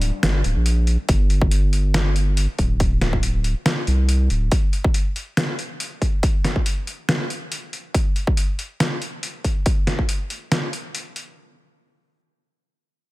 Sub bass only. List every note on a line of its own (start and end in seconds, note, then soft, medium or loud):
0.00 0.11 D1 medium
0.23 0.43 G1 medium
0.45 0.55 D1 loud
0.56 0.97 A#1 medium
1.09 2.47 G1 loud
2.59 3.54 D1 medium
3.87 4.29 C2 medium
4.30 4.50 D1 loud